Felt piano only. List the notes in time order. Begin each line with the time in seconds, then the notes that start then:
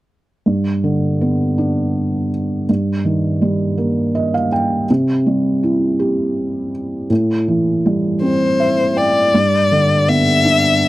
0.46 G2
0.84 D3
1.21 B3
1.58 D4
2.69 G2
3.05 D#3
3.42 G3
3.78 A#3
4.15 D#5
4.34 F5
4.52 G5
4.90 C3
5.26 G3
5.63 E4
5.99 G4
7.10 A2
7.48 E3
7.86 G3
8.22 C4
8.60 E5
8.97 G5
9.34 G2
9.72 D3
10.08 B3
10.45 D4